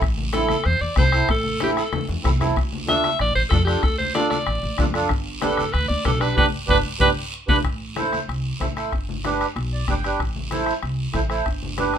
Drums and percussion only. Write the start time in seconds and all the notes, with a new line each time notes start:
0.01 bombo low, bombo rim, high conga, long guiro
0.17 high conga
0.33 bombo rim, high conga, short guiro
0.48 bombo rim, high conga, short guiro
0.64 bombo rim, high conga, long guiro
0.96 bombo low, bombo rim, high conga, short guiro
1.12 bombo rim, short guiro
1.29 bombo low, bombo rim, long guiro
1.44 high conga
1.60 bombo rim, high conga, short guiro
1.77 bombo rim, short guiro
1.93 bombo rim, high conga, long guiro
2.09 high conga
2.24 bombo low, bombo rim, low conga, short guiro
2.41 bombo rim, low conga, short guiro
2.56 bombo low, bombo rim, high conga, long guiro
2.73 high conga
2.88 bombo rim, high conga, short guiro
3.04 bombo rim, high conga, short guiro
3.19 bombo rim, high conga, long guiro
3.51 bombo low, bombo rim, high conga, short guiro
3.67 bombo rim, short guiro
3.83 bombo low, bombo rim, high conga, long guiro
4.00 high conga
4.15 bombo rim, high conga, short guiro
4.31 bombo rim, high conga, short guiro
4.47 bombo rim, long guiro
4.78 bombo low, bombo rim, high conga, low conga, short guiro
4.94 bombo rim, short guiro
5.09 bombo low, bombo rim, high conga, long guiro
5.42 bombo rim, high conga, short guiro
5.57 bombo rim, high conga, short guiro
5.74 bombo rim, high conga, long guiro
6.05 bombo low, bombo rim, high conga, short guiro
6.21 bombo rim, short guiro
6.37 bombo low, high conga, long guiro
6.68 bombo low, high conga, long guiro
7.00 bombo low, high conga, long guiro
7.48 bombo low, high conga, long guiro
7.64 bombo low, bombo rim, high conga, long guiro
7.96 bombo rim, high conga, short guiro
8.13 bombo rim, high conga, short guiro
8.29 bombo rim, high conga, long guiro
8.61 bombo low, bombo rim, high conga, short guiro
8.77 bombo rim, short guiro
8.92 bombo low, bombo rim, long guiro
9.09 high conga
9.24 bombo rim, high conga, short guiro
9.41 bombo rim, short guiro
9.56 bombo rim, high conga, long guiro
9.88 bombo low, bombo rim, high conga, short guiro
10.04 bombo rim, short guiro
10.20 bombo low, bombo rim, high conga, long guiro
10.36 high conga
10.51 bombo rim, high conga, short guiro
10.66 bombo rim, short guiro
10.82 bombo rim, long guiro
11.14 bombo low, bombo rim, high conga, short guiro
11.30 bombo rim, short guiro
11.46 bombo low, bombo rim, high conga, long guiro
11.62 high conga
11.78 bombo rim, high conga, short guiro
11.94 bombo rim, short guiro